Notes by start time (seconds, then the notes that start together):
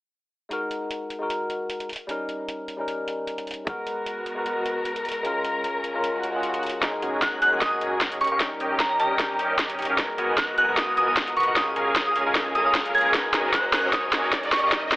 0.49 G#3 D#4 F#4, closed hi-hat
0.53 A#4
0.71 closed hi-hat
0.91 closed hi-hat
1.10 closed hi-hat
1.19 G#3 D#4 F#4
1.23 A#4
1.30 closed hi-hat
1.50 closed hi-hat
1.70 closed hi-hat
1.80 closed hi-hat
1.89 closed hi-hat
1.93 closed hi-hat
1.96 closed hi-hat
2.07 G3 C#4 D#4, closed hi-hat
2.11 A#4
2.29 closed hi-hat
2.48 closed hi-hat
2.68 closed hi-hat
2.77 G3 C#4 D#4
2.81 A#4
2.88 closed hi-hat
3.08 closed hi-hat
3.27 closed hi-hat
3.38 closed hi-hat
3.47 closed hi-hat
3.51 closed hi-hat
3.54 closed hi-hat
3.65 G#3 B3 F#4 A#4, kick, closed hi-hat
3.87 closed hi-hat
4.06 closed hi-hat
4.26 closed hi-hat
4.35 G#3 B3 F#4
4.39 A#4
4.46 closed hi-hat
4.66 closed hi-hat
4.85 closed hi-hat
4.96 closed hi-hat
5.05 closed hi-hat
5.09 closed hi-hat
5.12 closed hi-hat
5.23 G#3 C#4 F4 A#4, closed hi-hat
5.45 closed hi-hat
5.64 closed hi-hat
5.84 closed hi-hat
5.94 G#3 C#4 F4 A#4
6.04 closed hi-hat, swell
6.23 closed hi-hat
6.32 G#3 C#4 F4 G#4
6.43 closed hi-hat
6.54 closed hi-hat
6.63 closed hi-hat
6.67 closed hi-hat
6.70 closed hi-hat
6.81 F#1 D#3 G#3 A#3 C#4 D#4 F#4 G#4 A#4 D#5 G#5, kick, snare, closed hi-hat, riser
7.02 F#1 C#4 F#4 A#4 D#5 G#5, closed hi-hat
7.22 F#1 C#4 F#4 A#4 D#5 A#5 F#6, kick, snare, closed hi-hat
7.42 F#1 C#4 F#4 A#4 D#5 G#5 F#6, closed hi-hat
7.50 F#1 G#3 C#4 D#4 F#4 A#4 D#5 G#5
7.61 F#1 C#4 F#4 A#4 D#5 G#5 D#6, kick, snare, closed hi-hat
7.81 F#1 C#4 F#4 A#4 D#5 G#5, closed hi-hat
8.01 F#2 C#4 F#4 A#4 D#5 A#5, kick, snare, closed hi-hat
8.12 closed hi-hat
8.21 D#1 D#3 C#4 G4 A#4 D#5 C#6, closed hi-hat
8.24 closed hi-hat
8.27 closed hi-hat
8.31 D#1 C#4 G4 A#4 D#5 F5 C#6
8.38 D#1 G3 C#4 D#4 G4 A#4 D#5 G5, kick, snare, closed hi-hat
8.43 A#4
8.60 D#1 C#4 G4 A#4 D#5 G5, closed hi-hat
8.80 D#1 C#4 G4 A#4 D#5 A#5, kick, snare, closed hi-hat
8.91 A#5
9.00 D#1 C#4 G4 A#4 D#5 G5 A#5, closed hi-hat
9.09 D#1 G3 C#4 D#4 G4 A#4 D#5 G5
9.19 D#1 C#4 G4 A#4 D#5 G5, kick, snare, closed hi-hat
9.39 D#1 C#4 G4 A#4 D#5 G5, closed hi-hat
9.59 D#2 C#4 G4 A#4 D#5 A#5, kick, snare, closed hi-hat
9.70 closed hi-hat
9.79 D#1 C#4 G4 A#4 D#5 C#6, closed hi-hat
9.82 closed hi-hat
9.85 closed hi-hat
9.89 D#2 C#4 G4 A#4 D#5 F5
9.96 G#1 F#3 G#3 B3 F#4 A#4 D#5 G#5, kick, snare, closed hi-hat
10.00 A#4
10.18 G#1 B3 F#4 A#4 D#5 G#5, closed hi-hat
10.38 G#1 B3 F#4 A#4 D#5 A#5 F#6, kick, snare, closed hi-hat
10.58 G#1 B3 F#4 A#4 D#5 G#5 F#6, closed hi-hat
10.66 G#1 G#3 B3 F#4 A#4 D#5 G#5
10.77 G#1 B3 F#4 A#4 D#5 G#5 D#6, kick, snare, closed hi-hat
10.97 G#1 B3 F#4 A#4 D#5 G#5 D#6, closed hi-hat
11.08 D#6
11.17 G#1 B3 F#4 A#4 D#5 A#5, kick, snare, closed hi-hat
11.28 closed hi-hat
11.37 G#2 B3 F#4 A#4 D#5 B5 C#6, closed hi-hat
11.40 closed hi-hat
11.43 G#1, closed hi-hat
11.47 B3 F#4 A#4 D#5 F#5
11.54 A#1 C#3 G#3 A#3 C#4 F4 G#4 A#4 F5 G#5 D#6, kick, snare, closed hi-hat
11.76 A#1 C#4 G#4 A#4 F5 G#5, closed hi-hat
11.96 A#1 C#4 G#4 A#4 F5 A#5 D#6, kick, snare, closed hi-hat
12.07 D#6
12.16 A#1 C#4 G#4 A#4 F5 G#5, closed hi-hat
12.25 A#1 G#3 C#4 F4 G#4 A#4 F5 G#5
12.35 A#1 C#4 G#4 A#4 F5 G#5, kick, snare, closed hi-hat
12.55 A#1 C#4 G#4 A#4 F5 A#5 D#6, closed hi-hat
12.64 G#3 C#4 F4 D#6
12.68 G#4
12.75 kick, snare, closed hi-hat
12.85 A#1 C#4 G#4 A#4 F5 A#5, closed hi-hat
12.94 A#1 C#4 G#4 A#4 F5 A#5 G#6, closed hi-hat
12.98 closed hi-hat
13.01 closed hi-hat
13.05 G#6
13.12 F#1 D#3 G#3 C#4 D#4 F#4 A#4 D#5 G#5, kick, snare, closed hi-hat
13.34 F#1 C#4 F#4 A#4 D#5 G#5, snare, closed hi-hat
13.54 F#1 C#4 F#4 A#4 D#5 A#5 F#6, kick, snare, closed hi-hat
13.73 F#1 C#4 F#4 A#4 D#5 G#5 F#6, snare, open hi-hat
13.82 F#1 G#3 C#4 D#4 F#4 A#4 D#5 G#5
13.86 A#4
13.93 F#1 C#4 F#4 A#4 D#5 G#5 D#6, kick, snare, closed hi-hat
14.13 F#1 C#4 F#4 A#4 D#5 G#5, snare, closed hi-hat
14.33 F#2 C#4 F#4 A#4 D#5 A#5, kick, snare, closed hi-hat
14.43 closed hi-hat
14.52 D#1 C#4 G4 A#4 D#5 C#6, snare, closed hi-hat
14.56 closed hi-hat
14.59 closed hi-hat
14.63 D#1 C#4 G4 A#4 D#5 F5 C#6
14.70 D#1 G3 C#4 D#4 G4 A#4 D#5 G5, kick, snare, closed hi-hat
14.74 A#4
14.92 D#1 C#4 G4 A#4 D#5 G5, snare, closed hi-hat